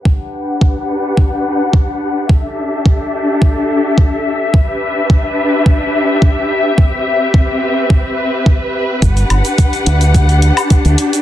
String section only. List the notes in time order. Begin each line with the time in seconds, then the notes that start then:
0.05 D4 G4 B4 F#5
2.29 D4 G4 A4 E5
4.54 D4 G4 B4
6.78 C4 B4
9.02 D4 G4 F#5